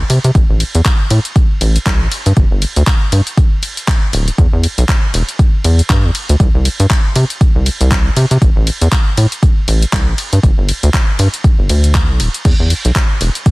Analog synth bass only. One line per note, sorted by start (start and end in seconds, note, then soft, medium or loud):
0.10 0.19 C3 medium
0.24 0.31 C3 medium
0.35 0.44 A1 loud
0.50 0.63 A1 medium
0.75 0.81 E2 loud
1.11 1.20 A2 medium
1.61 1.78 A1 loud
1.86 2.02 C2 medium
2.01 2.07 A1 loud
2.26 2.33 G2 medium
2.37 2.46 G1 loud
2.51 2.65 G1 medium
2.77 2.83 D2 loud
3.12 3.21 G2 medium
4.13 4.30 D1 loud
4.38 4.47 E2 loud
4.53 4.67 E2 medium
4.78 4.85 B1 loud
5.14 5.23 E1 medium
5.64 5.81 E2 medium
5.90 6.06 G2 medium
6.04 6.11 E2 loud
6.29 6.36 D2 medium
6.40 6.49 C2 loud
6.55 6.68 C2 medium
6.80 6.86 G2 loud
7.16 7.25 C3 medium
7.55 7.69 C2 medium
7.81 8.10 C2 loud
8.16 8.25 C3 medium
8.31 8.38 C3 medium
8.42 8.51 A1 loud
8.56 8.70 A1 medium
8.81 8.88 E2 loud
9.17 9.26 A2 medium
9.68 9.85 A1 loud
9.93 10.09 C2 medium
10.08 10.14 A1 loud
10.33 10.39 G2 medium
10.43 10.52 G1 loud
10.58 10.72 G1 medium
10.83 10.90 D2 loud
11.19 11.28 G2 medium
11.59 11.69 G1 medium
11.70 12.11 D2 medium
12.09 12.21 B1 medium
12.20 12.29 D1 loud
12.45 12.54 E2 loud
12.60 12.74 E2 medium
12.85 12.91 B1 loud
13.21 13.30 E1 medium